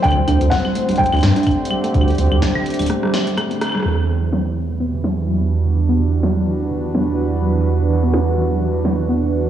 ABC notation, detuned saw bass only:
X:1
M:4/4
L:1/16
Q:"Swing 16ths" 1/4=126
K:Em
V:1 name="Detuned saw bass" clef=bass
D,, z D,, D,, z3 D,,, z D,, G,, z4 z | D,, z D,, D,, z3 D,,, z8 | E,,16- | E,,16- |
E,,16 |]